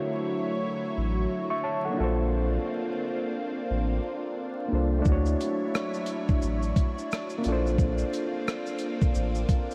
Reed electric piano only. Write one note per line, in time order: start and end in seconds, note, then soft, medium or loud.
0.00 1.91 A3 medium
0.00 1.92 D4 medium
0.00 1.95 E4 medium
0.00 1.97 F#4 medium
0.00 0.98 C#5 medium
1.50 1.64 E5 medium
1.50 1.64 C#6 medium
1.64 1.84 C#5 medium
1.64 1.83 A5 medium
1.85 1.99 A4 medium
1.85 2.17 F#5 medium
1.90 4.63 A#3 medium
1.90 4.65 D4 medium
1.97 4.67 F4 medium
1.97 4.68 A4 medium
2.04 4.70 C5 medium
4.68 5.04 A#3 medium
4.68 5.01 D4 medium
4.68 5.06 F4 soft
4.73 5.07 A4 soft
4.73 5.07 C5 medium
4.99 7.37 A3 medium
4.99 7.39 D4 medium
5.06 7.40 E4 medium
5.06 7.42 F#4 medium
5.12 7.44 C#5 medium
7.38 9.75 A#3 medium
7.38 7.51 C#4 soft
7.45 9.75 D4 medium
7.45 9.75 F4 medium
7.45 9.75 A4 medium
7.52 9.75 C5 medium